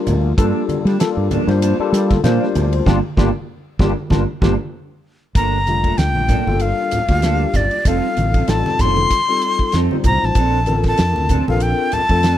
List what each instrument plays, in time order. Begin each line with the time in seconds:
Already playing: tine electric piano G3 A#3 D4 F4 A#4
0.07 fretless electric bass D2, hi-hat pedal, ride, low conga
0.24 muted clean electric guitar stroke
0.38 fretless electric bass G2, clean electric guitar F3 A#3 D4, tine electric piano G3 A#3 D4 F4 A4, kick, hi-hat pedal, ride
0.68 muted fretless electric bass stroke, muted clean electric guitar stroke, hi-hat pedal, ride, high conga
0.85 fretless electric bass G3, clean electric guitar A#3 D4, snare, ride
0.99 tine electric piano G3 A#3 D4 F4 A4, muted clean electric guitar stroke, snare, hi-hat pedal, ride
1.17 fretless electric bass G2, muted clean electric guitar stroke
1.31 clean electric guitar F3 A#3 D4, hi-hat pedal, ride, high conga, low conga
1.47 fretless electric bass G2, tine electric piano G3 A#3 D4 F4 C5, muted clean electric guitar stroke, snare, ride
1.62 clean electric guitar F3 A#3 D4, hi-hat pedal, ride
1.79 tine electric piano G3 A#3 D4 F4 A4, muted fretless electric bass stroke, muted clean electric guitar stroke
1.92 fretless electric bass G3, snare, hi-hat pedal, ride
2.11 muted clean electric guitar stroke, kick, snare, ride, high conga
2.24 fretless electric bass A#2, clean electric guitar F3 A#3 D4, tine electric piano G3 A#3 D4 F4 C5, snare, hi-hat pedal, ride
2.43 snare
2.55 fretless electric bass D2, muted clean electric guitar stroke, hi-hat pedal, ride, low conga
2.72 muted clean electric guitar stroke, ride
2.86 fretless electric bass G1, clean electric guitar G3 A#3 D4, tine electric piano D4 F4 G4, kick, snare, high conga
3.17 fretless electric bass G1, clean electric guitar G3 A#3 D4, tine electric piano D4 F4 G4, kick, snare, high conga
3.79 fretless electric bass G1, clean electric guitar G3 A#3 D4, tine electric piano D4 F4 G4, kick, snare, high conga
4.10 fretless electric bass G1, clean electric guitar G3 A#3 D4, tine electric piano D4 F4 G4, kick, snare, high conga
4.41 fretless electric bass G1, clean electric guitar G3 A#3 D4, tine electric piano D4 F4 G4, kick, snare, high conga
5.35 fretless electric bass G1, clean electric guitar F3 A#3 D4 A4, flute A#5, kick, hi-hat pedal, ride
5.67 fretless electric bass F1, tine electric piano G3 A3 A#3 D4 F4, muted clean electric guitar stroke, hi-hat pedal, ride, high conga
5.83 clean electric guitar A#3 D4 A4, kick, ride
5.98 fretless electric bass D2, flute G5, snare, hi-hat pedal, ride
6.15 fretless electric bass A#1, muted clean electric guitar stroke, high conga
6.28 clean electric guitar F3 A#3 D4 A4, kick, hi-hat pedal, ride, low conga
6.47 fretless electric bass G1, tine electric piano G3 A#3 D4 F4 A4, muted clean electric guitar stroke, high conga
6.59 flute F5, hi-hat pedal, ride
6.79 muted clean electric guitar stroke
6.91 hi-hat pedal, ride, low conga
7.08 fretless electric bass D2, tine electric piano G3 A#3 D4 F4 G4, muted clean electric guitar stroke, kick, snare, ride
7.22 clean electric guitar F3 A#3 D4 A4, snare, hi-hat pedal, ride
7.53 fretless electric bass G1, flute D5, muted clean electric guitar stroke, kick, snare, hi-hat pedal, ride, low conga
7.71 muted clean electric guitar stroke, ride
7.85 fretless electric bass F1, clean electric guitar F3 C4 D#4 A4, tine electric piano G3 C4 D#4 F4 A4, flute F5, kick, hi-hat pedal, ride
8.17 fretless electric bass A1, muted clean electric guitar stroke, hi-hat pedal, ride, high conga
8.34 clean electric guitar C4 D#4 A4, kick, ride
8.48 fretless electric bass A1, tine electric piano G3 C4 D#4 F4 A4, flute A5, muted clean electric guitar stroke, snare, hi-hat pedal, ride
8.66 muted clean electric guitar stroke, snare, high conga
8.79 fretless electric bass F1, clean electric guitar F3 C4 D#4 A4, flute C6, kick, hi-hat pedal, ride, low conga
8.97 muted clean electric guitar stroke, high conga
9.10 kick, hi-hat pedal, ride
9.28 tine electric piano G3 C4 D#4 F4 A4, muted clean electric guitar stroke
9.41 hi-hat pedal, ride
9.59 muted clean electric guitar stroke, kick
9.72 fretless electric bass F2, clean electric guitar F3 C4 D#4 A4, snare, hi-hat pedal, ride
9.91 tine electric piano G3 C4 D#4 F4 C5, high conga
10.04 fretless electric bass C2, flute A#5, kick, hi-hat pedal, ride, low conga
10.23 fretless electric bass A1, flute A5, muted clean electric guitar stroke, snare
10.35 fretless electric bass A#1, clean electric guitar F3 C4 D4 A4, kick, hi-hat pedal, ride
10.66 fretless electric bass A1, tine electric piano C4 D4 F4 A4 A#4, muted clean electric guitar stroke, hi-hat pedal, ride, high conga
10.84 clean electric guitar D4 A4, kick, snare, ride
10.88 clean electric guitar C4, flute A5
10.98 fretless electric bass F2, snare, hi-hat pedal, ride
11.16 fretless electric bass D2, muted clean electric guitar stroke, high conga
11.29 clean electric guitar F3 C4 D4 A4, kick, hi-hat pedal, ride, low conga
11.48 fretless electric bass A#1, tine electric piano C4 D4 F4 A4 A#4, flute F5, muted clean electric guitar stroke, high conga
11.60 flute G5, hi-hat pedal, ride
11.79 muted clean electric guitar stroke
11.91 flute A5, hi-hat pedal, ride, low conga
12.09 fretless electric bass F2, tine electric piano A3 C4 D4 F4 A4, muted clean electric guitar stroke, kick, ride
12.23 clean electric guitar F3 C4 D4 A4, snare, hi-hat pedal, ride